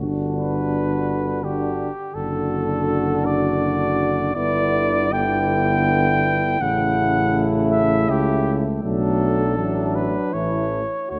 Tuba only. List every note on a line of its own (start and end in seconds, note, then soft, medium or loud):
0.04 1.90 G1 soft
2.16 4.31 F#1 soft
4.36 6.56 G1 medium
6.60 8.10 A1 medium
8.09 8.83 C#2 medium
8.84 9.60 B1 medium
9.58 10.17 A1 medium
10.34 10.83 A1 soft
11.12 11.19 D2 soft